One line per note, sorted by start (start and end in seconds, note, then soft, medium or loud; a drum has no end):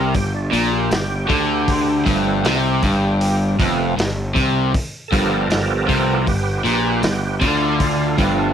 0.00 0.12 C2 medium
0.00 0.13 C3 medium
0.00 0.14 A#4 medium
0.14 0.50 G1 medium
0.14 0.46 G2 medium
0.14 0.33 G4 medium
0.14 kick medium
0.14 open hi-hat medium
0.34 0.71 D4 medium
0.52 0.89 A#1 medium
0.52 0.90 A#2 loud
0.52 open hi-hat medium
0.72 1.28 G4 medium
0.91 1.27 G1 medium
0.91 1.22 G2 medium
0.91 snare loud
0.91 open hi-hat medium
1.25 2.05 D3 loud
1.25 1.30 F#4 medium
1.25 3.55 G4 medium
1.30 2.02 D2 loud
1.30 kick loud
1.30 open hi-hat medium
1.68 kick loud
1.68 open hi-hat medium
2.05 2.42 G1 loud
2.05 2.43 G2 medium
2.05 2.58 F3 medium
2.05 2.57 A3 soft
2.05 2.58 B3 medium
2.05 kick medium
2.05 open hi-hat medium
2.45 2.80 C2 medium
2.45 2.82 C3 loud
2.45 snare loud
2.45 open hi-hat medium
2.83 3.56 G1 medium
2.83 3.58 G2 medium
2.83 kick loud
2.83 open hi-hat medium
3.21 open hi-hat medium
3.60 3.95 F1 medium
3.60 3.97 F2 loud
3.60 3.94 F3 soft
3.60 3.94 A3 soft
3.60 3.95 B3 medium
3.60 kick loud
3.60 open hi-hat medium
3.98 4.34 G1 medium
3.98 4.28 G2 medium
3.98 snare loud
3.98 open hi-hat medium
4.35 4.72 C2 medium
4.35 4.72 C3 loud
4.35 kick loud
4.35 open hi-hat medium
4.73 muted overdriven electric guitar stroke medium
4.73 muted fingered electric bass stroke soft
4.73 kick loud
4.73 open hi-hat medium
5.08 5.49 G2 medium
5.08 6.23 F3 medium
5.08 5.48 G4 medium
5.08 5.11 A4 medium
5.12 5.48 G1 loud
5.12 6.24 B3 medium
5.12 6.23 A4 soft
5.12 5.49 A#4 medium
5.12 kick loud
5.12 open hi-hat medium
5.50 5.87 G1 medium
5.50 5.81 G2 medium
5.50 5.86 G4 medium
5.50 5.88 A#4 medium
5.50 snare loud
5.50 open hi-hat medium
5.88 6.25 C2 medium
5.88 6.26 C3 medium
5.88 6.25 G4 medium
5.88 6.26 A#4 medium
5.88 kick loud
5.88 open hi-hat medium
6.27 6.63 G1 medium
6.27 6.58 G2 medium
6.27 6.63 B3 medium
6.27 6.64 G4 medium
6.27 kick medium
6.27 open hi-hat medium
6.65 7.01 A#1 medium
6.65 7.02 A#2 loud
6.65 7.03 G4 medium
6.65 7.01 B4 medium
6.65 open hi-hat medium
7.03 7.39 G1 medium
7.03 7.34 G2 medium
7.03 7.40 B3 medium
7.03 7.41 G4 medium
7.03 snare loud
7.03 open hi-hat medium
7.41 8.15 D2 medium
7.41 8.17 D3 loud
7.41 7.78 D4 medium
7.41 7.80 F4 medium
7.41 kick loud
7.41 open hi-hat medium
7.80 8.16 D4 medium
7.80 8.18 F4 medium
7.80 kick loud
7.80 open hi-hat medium
8.18 8.53 G1 loud
8.18 8.53 G2 medium
8.18 8.53 F3 soft
8.18 8.53 A3 soft
8.18 8.53 B3 medium
8.18 8.53 D4 medium
8.18 8.53 F4 medium
8.18 kick loud
8.18 open hi-hat medium